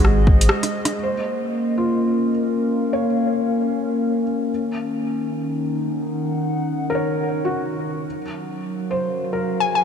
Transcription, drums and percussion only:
0, 0, Header, 1, 2, 480
1, 0, Start_track
1, 0, Key_signature, -5, "minor"
1, 0, Tempo, 444444
1, 1014, Time_signature, 4, 2, 24, 8
1, 10628, End_track
2, 0, Start_track
2, 0, Title_t, "Drums"
2, 50, Note_on_c, 9, 37, 59
2, 158, Note_off_c, 9, 37, 0
2, 291, Note_on_c, 9, 36, 102
2, 399, Note_off_c, 9, 36, 0
2, 445, Note_on_c, 9, 42, 59
2, 529, Note_on_c, 9, 37, 101
2, 553, Note_off_c, 9, 42, 0
2, 637, Note_off_c, 9, 37, 0
2, 682, Note_on_c, 9, 37, 39
2, 682, Note_on_c, 9, 42, 47
2, 790, Note_off_c, 9, 37, 0
2, 790, Note_off_c, 9, 42, 0
2, 921, Note_on_c, 9, 37, 57
2, 921, Note_on_c, 9, 42, 58
2, 1029, Note_off_c, 9, 37, 0
2, 1029, Note_off_c, 9, 42, 0
2, 10628, End_track
0, 0, End_of_file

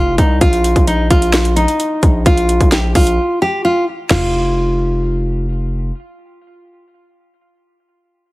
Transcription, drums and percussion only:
0, 0, Header, 1, 2, 480
1, 0, Start_track
1, 0, Tempo, 461538
1, 430, Time_signature, 4, 2, 24, 8
1, 8657, End_track
2, 0, Start_track
2, 0, Title_t, "Drums"
2, 190, Note_on_c, 9, 36, 102
2, 190, Note_on_c, 9, 42, 74
2, 294, Note_off_c, 9, 36, 0
2, 294, Note_off_c, 9, 42, 0
2, 429, Note_on_c, 9, 36, 127
2, 430, Note_on_c, 9, 42, 85
2, 533, Note_off_c, 9, 36, 0
2, 534, Note_off_c, 9, 42, 0
2, 550, Note_on_c, 9, 42, 58
2, 654, Note_off_c, 9, 42, 0
2, 669, Note_on_c, 9, 42, 80
2, 773, Note_off_c, 9, 42, 0
2, 789, Note_on_c, 9, 36, 86
2, 790, Note_on_c, 9, 42, 51
2, 893, Note_off_c, 9, 36, 0
2, 894, Note_off_c, 9, 42, 0
2, 910, Note_on_c, 9, 42, 78
2, 1014, Note_off_c, 9, 42, 0
2, 1149, Note_on_c, 9, 42, 93
2, 1150, Note_on_c, 9, 36, 98
2, 1253, Note_off_c, 9, 42, 0
2, 1254, Note_off_c, 9, 36, 0
2, 1269, Note_on_c, 9, 42, 66
2, 1373, Note_off_c, 9, 42, 0
2, 1389, Note_on_c, 9, 38, 112
2, 1389, Note_on_c, 9, 42, 85
2, 1493, Note_off_c, 9, 38, 0
2, 1493, Note_off_c, 9, 42, 0
2, 1509, Note_on_c, 9, 42, 63
2, 1613, Note_off_c, 9, 42, 0
2, 1629, Note_on_c, 9, 42, 88
2, 1733, Note_off_c, 9, 42, 0
2, 1750, Note_on_c, 9, 42, 59
2, 1854, Note_off_c, 9, 42, 0
2, 1869, Note_on_c, 9, 42, 73
2, 1973, Note_off_c, 9, 42, 0
2, 2109, Note_on_c, 9, 36, 101
2, 2109, Note_on_c, 9, 42, 76
2, 2213, Note_off_c, 9, 36, 0
2, 2213, Note_off_c, 9, 42, 0
2, 2349, Note_on_c, 9, 36, 127
2, 2349, Note_on_c, 9, 42, 84
2, 2453, Note_off_c, 9, 36, 0
2, 2453, Note_off_c, 9, 42, 0
2, 2469, Note_on_c, 9, 42, 58
2, 2573, Note_off_c, 9, 42, 0
2, 2589, Note_on_c, 9, 42, 80
2, 2693, Note_off_c, 9, 42, 0
2, 2709, Note_on_c, 9, 36, 88
2, 2710, Note_on_c, 9, 42, 51
2, 2813, Note_off_c, 9, 36, 0
2, 2814, Note_off_c, 9, 42, 0
2, 2830, Note_on_c, 9, 38, 96
2, 2830, Note_on_c, 9, 42, 79
2, 2934, Note_off_c, 9, 38, 0
2, 2934, Note_off_c, 9, 42, 0
2, 3070, Note_on_c, 9, 36, 96
2, 3070, Note_on_c, 9, 46, 92
2, 3174, Note_off_c, 9, 36, 0
2, 3174, Note_off_c, 9, 46, 0
2, 3190, Note_on_c, 9, 42, 67
2, 3294, Note_off_c, 9, 42, 0
2, 4270, Note_on_c, 9, 38, 108
2, 4270, Note_on_c, 9, 43, 112
2, 4270, Note_on_c, 9, 49, 92
2, 4374, Note_off_c, 9, 38, 0
2, 4374, Note_off_c, 9, 43, 0
2, 4374, Note_off_c, 9, 49, 0
2, 8657, End_track
0, 0, End_of_file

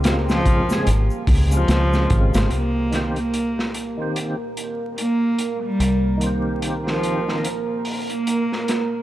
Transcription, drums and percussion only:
0, 0, Header, 1, 2, 480
1, 0, Start_track
1, 0, Tempo, 821918
1, 1466, Time_signature, 4, 2, 24, 8
1, 5270, End_track
2, 0, Start_track
2, 0, Title_t, "Drums"
2, 23, Note_on_c, 9, 42, 84
2, 31, Note_on_c, 9, 38, 102
2, 32, Note_on_c, 9, 82, 64
2, 81, Note_off_c, 9, 42, 0
2, 89, Note_off_c, 9, 38, 0
2, 90, Note_off_c, 9, 82, 0
2, 169, Note_on_c, 9, 82, 38
2, 174, Note_on_c, 9, 38, 43
2, 227, Note_off_c, 9, 82, 0
2, 232, Note_off_c, 9, 38, 0
2, 266, Note_on_c, 9, 36, 89
2, 267, Note_on_c, 9, 42, 64
2, 324, Note_off_c, 9, 36, 0
2, 326, Note_off_c, 9, 42, 0
2, 407, Note_on_c, 9, 82, 74
2, 415, Note_on_c, 9, 38, 39
2, 465, Note_off_c, 9, 82, 0
2, 473, Note_off_c, 9, 38, 0
2, 506, Note_on_c, 9, 42, 86
2, 509, Note_on_c, 9, 82, 56
2, 564, Note_off_c, 9, 42, 0
2, 567, Note_off_c, 9, 82, 0
2, 644, Note_on_c, 9, 82, 37
2, 702, Note_off_c, 9, 82, 0
2, 743, Note_on_c, 9, 36, 94
2, 744, Note_on_c, 9, 46, 86
2, 802, Note_off_c, 9, 36, 0
2, 803, Note_off_c, 9, 46, 0
2, 884, Note_on_c, 9, 42, 40
2, 886, Note_on_c, 9, 82, 82
2, 942, Note_off_c, 9, 42, 0
2, 944, Note_off_c, 9, 82, 0
2, 983, Note_on_c, 9, 42, 70
2, 988, Note_on_c, 9, 38, 90
2, 988, Note_on_c, 9, 82, 61
2, 1041, Note_off_c, 9, 42, 0
2, 1046, Note_off_c, 9, 38, 0
2, 1047, Note_off_c, 9, 82, 0
2, 1128, Note_on_c, 9, 82, 32
2, 1132, Note_on_c, 9, 38, 33
2, 1186, Note_off_c, 9, 82, 0
2, 1190, Note_off_c, 9, 38, 0
2, 1226, Note_on_c, 9, 42, 58
2, 1229, Note_on_c, 9, 36, 78
2, 1284, Note_off_c, 9, 42, 0
2, 1287, Note_off_c, 9, 36, 0
2, 1367, Note_on_c, 9, 82, 74
2, 1368, Note_on_c, 9, 42, 80
2, 1374, Note_on_c, 9, 38, 98
2, 1426, Note_off_c, 9, 82, 0
2, 1427, Note_off_c, 9, 42, 0
2, 1433, Note_off_c, 9, 38, 0
2, 1462, Note_on_c, 9, 42, 73
2, 1521, Note_off_c, 9, 42, 0
2, 1708, Note_on_c, 9, 42, 55
2, 1713, Note_on_c, 9, 38, 42
2, 1766, Note_off_c, 9, 42, 0
2, 1772, Note_off_c, 9, 38, 0
2, 1846, Note_on_c, 9, 42, 33
2, 1905, Note_off_c, 9, 42, 0
2, 1948, Note_on_c, 9, 42, 63
2, 2007, Note_off_c, 9, 42, 0
2, 2097, Note_on_c, 9, 38, 34
2, 2155, Note_off_c, 9, 38, 0
2, 2186, Note_on_c, 9, 42, 60
2, 2245, Note_off_c, 9, 42, 0
2, 2429, Note_on_c, 9, 42, 74
2, 2488, Note_off_c, 9, 42, 0
2, 2669, Note_on_c, 9, 42, 59
2, 2728, Note_off_c, 9, 42, 0
2, 2908, Note_on_c, 9, 42, 67
2, 2966, Note_off_c, 9, 42, 0
2, 3145, Note_on_c, 9, 42, 63
2, 3204, Note_off_c, 9, 42, 0
2, 3389, Note_on_c, 9, 42, 72
2, 3447, Note_off_c, 9, 42, 0
2, 3626, Note_on_c, 9, 42, 50
2, 3685, Note_off_c, 9, 42, 0
2, 3868, Note_on_c, 9, 42, 71
2, 3926, Note_off_c, 9, 42, 0
2, 4013, Note_on_c, 9, 38, 33
2, 4071, Note_off_c, 9, 38, 0
2, 4108, Note_on_c, 9, 42, 58
2, 4167, Note_off_c, 9, 42, 0
2, 4254, Note_on_c, 9, 38, 33
2, 4313, Note_off_c, 9, 38, 0
2, 4348, Note_on_c, 9, 42, 70
2, 4406, Note_off_c, 9, 42, 0
2, 4583, Note_on_c, 9, 46, 70
2, 4642, Note_off_c, 9, 46, 0
2, 4728, Note_on_c, 9, 42, 36
2, 4786, Note_off_c, 9, 42, 0
2, 4830, Note_on_c, 9, 42, 69
2, 4888, Note_off_c, 9, 42, 0
2, 4978, Note_on_c, 9, 38, 28
2, 5037, Note_off_c, 9, 38, 0
2, 5070, Note_on_c, 9, 42, 63
2, 5076, Note_on_c, 9, 38, 47
2, 5128, Note_off_c, 9, 42, 0
2, 5134, Note_off_c, 9, 38, 0
2, 5270, End_track
0, 0, End_of_file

